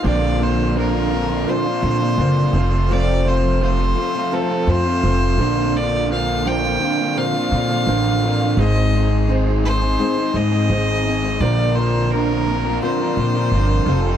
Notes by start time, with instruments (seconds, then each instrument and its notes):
0.02 upright bass A#1, overdriven electric guitar A#2 D3 A#3, steel-string acoustic guitar F3, grand piano D4 A#4 C5, tonewheel organ A#4 D5 F5 C6
0.06 steel-string acoustic guitar C4, overdriven electric guitar D4 F4, fiddle D5
0.39 overdriven electric guitar D3 A#3 D4, grand piano D4 A#4 C5
0.43 overdriven electric guitar F4, fiddle C5
0.75 overdriven electric guitar A#2 D3 A#3 D4 F4, steel-string acoustic guitar F3 C4, grand piano D4 A#4 C5, fiddle A#4
0.93 overdriven electric guitar A#3 D4 F4
1.11 overdriven electric guitar D3 A#3 D4 F4, steel-string acoustic guitar C4
1.28 overdriven electric guitar A#3 D4 F4
1.46 steel-string acoustic guitar A#2 F3 C4 D4 F4, grand piano D4 A#4 C5, fiddle C5
1.65 overdriven electric guitar A#3 D4 F4
1.83 upright bass A#2, overdriven electric guitar D3 A#3 D4 F4
2.00 overdriven electric guitar A#3 D4 F4
2.17 upright bass F#1, overdriven electric guitar A#2 D3 A#3 D4 F4, steel-string acoustic guitar F3 C4, grand piano D4 A#4 C5
2.53 upright bass F1, overdriven electric guitar F2 C3 F3 A3 C4 F4, grand piano F4 A4 C5, tonewheel organ A4 C5
2.71 overdriven electric guitar F3 A3 C4 F4
2.88 overdriven electric guitar F2 C3 F3 A3 C4 F4, fiddle D5
3.24 overdriven electric guitar F3 A3 C4 F4, grand piano F4 A4 C5, fiddle C5
3.60 overdriven electric guitar F2 C3 F3 A3 C4 F4, grand piano F4 A4 C5, fiddle C5
3.79 overdriven electric guitar F3 A3 C4 F4
3.96 overdriven electric guitar F3 A3 C4 F4
4.14 overdriven electric guitar F3 A3 C4 F4
4.31 steel-string acoustic guitar F2 C3 F3 A3 C4 F4, grand piano F4 A4 C5, fiddle A4
4.49 overdriven electric guitar F3 A3 C4 F4
4.67 upright bass F2, overdriven electric guitar F3 A3 C4 F4, fiddle C5
4.85 overdriven electric guitar F3 A3 C4 F4
5.03 upright bass F1, overdriven electric guitar F2 C3 F3 A3 C4 F4, grand piano F4 A4 C5
5.38 upright bass A#1, overdriven electric guitar A#2 D3 A#3 D4 F4, steel-string acoustic guitar F3 C4, grand piano D4 A#4 C5, tonewheel organ A#4 D5
5.56 overdriven electric guitar A#3 D4 F4
5.75 overdriven electric guitar A#2 D3 A#3 D4 F4, fiddle D5
6.10 overdriven electric guitar D3 A#3 D4 F4, grand piano D4 A#4 C5, fiddle F5
6.45 overdriven electric guitar A#2 D3 A#3 D4 F4, steel-string acoustic guitar F3 C4, grand piano D4 A#4 C5, fiddle G5
6.64 overdriven electric guitar A#3 D4 F4
6.81 overdriven electric guitar D3 A#3 D4 F4, steel-string acoustic guitar F3 C4
6.98 overdriven electric guitar A#3 D4 F4
7.16 steel-string acoustic guitar A#2 D3 F3 A#3 C4 F4, grand piano D4 A#4 C5, fiddle F5
7.34 overdriven electric guitar A#3 D4 F4
7.52 upright bass A#2, overdriven electric guitar D3 A#3 D4 F4
7.70 overdriven electric guitar A#3 D4 F4
7.87 upright bass A1, overdriven electric guitar A#2 D3 A#3 D4 F4, steel-string acoustic guitar F3 C4, grand piano D4 A#4 C5
8.23 overdriven electric guitar D3 A#3 D4 F4, steel-string acoustic guitar F3 C4
8.41 overdriven electric guitar A#3 D4 F4
8.57 upright bass G#1, overdriven electric guitar G#2 D#3 G#3 C4 D#4, grand piano D#4 G#4 C5, tonewheel organ G#4 C5 D#5, fiddle D#5
8.61 overdriven electric guitar G#4
8.93 overdriven electric guitar G#3 C4 D#4 G#4, grand piano D#4 G#4 C5
9.28 overdriven electric guitar G#2 D#3 G#3 C4 D#4 G#4, grand piano D#4 G#4 C5
9.46 overdriven electric guitar G#3 C4 D#4 G#4
9.64 overdriven electric guitar G#3 C4 D#4 G#4, fiddle C5
9.82 overdriven electric guitar G#3 C4 D#4 G#4
9.99 steel-string acoustic guitar G#2 D#3 G#3 C4 D#4 G#4, grand piano D#4 G#4 C5
10.17 overdriven electric guitar G#3 C4 D#4 G#4
10.34 upright bass G#2, overdriven electric guitar G#3 C4 D#4 G#4, fiddle D#5
10.52 overdriven electric guitar G#3 C4 D#4 G#4
10.70 upright bass G#1, overdriven electric guitar G#2 D#3 G#3 C4 D#4 G#4, grand piano D#4 G#4 C5
11.05 overdriven electric guitar G#3 C4 D#4 G#4
11.24 overdriven electric guitar G#3 C4 D#4 G#4
11.40 upright bass A#1, overdriven electric guitar A#2 D3 F3 A#3 D4 A#4, steel-string acoustic guitar C4 F4, grand piano D4 A#4 C5, tonewheel organ A#4 D5 F5, fiddle D5
11.76 overdriven electric guitar F3 A#3 D4 A#4, grand piano D4 A#4 C5, fiddle C5
12.11 overdriven electric guitar A#2 D3 F3 A#3 D4 A#4, steel-string acoustic guitar C4 F4, grand piano D4 A#4 C5, fiddle A#4
12.30 overdriven electric guitar F3 A#3 D4 A#4
12.46 overdriven electric guitar F3 A#3 D4, steel-string acoustic guitar C4 F4
12.51 overdriven electric guitar A#4
12.65 overdriven electric guitar F3 A#3 D4 A#4
12.81 steel-string acoustic guitar A#2 D3 F3 A#3 C4 F4, grand piano D4 A#4 C5, fiddle C5
13.00 overdriven electric guitar F3 A#3 D4 A#4
13.17 upright bass A#2, overdriven electric guitar F3 A#3 D4 A#4
13.34 overdriven electric guitar F3 A#3 D4 A#4
13.52 upright bass G1, overdriven electric guitar A#2 D3 F3 A#3 D4 A#4, steel-string acoustic guitar C4 F4, grand piano D4 A#4 C5
13.86 upright bass F1, overdriven electric guitar F3 C4 F4 A4, grand piano F4 A4 C5, tonewheel organ A4 C5
14.05 overdriven electric guitar C4 F4 A4